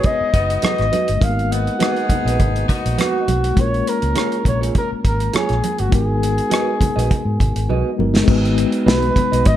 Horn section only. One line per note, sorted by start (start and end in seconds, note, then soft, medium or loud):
0.00 0.29 B3 medium
0.00 0.29 D#4 medium
0.00 0.29 G#4 medium
0.33 0.88 B3 medium
0.33 0.88 D#4 medium
0.33 0.88 F#4 medium
1.51 1.74 B3 medium
1.51 1.74 D#4 medium
1.51 1.74 F#4 medium
1.80 2.65 B3 medium
1.80 2.65 D#4 medium
1.80 2.65 G#4 medium
2.68 3.24 B3 medium
2.68 3.24 D#4 medium
2.68 3.24 F#4 medium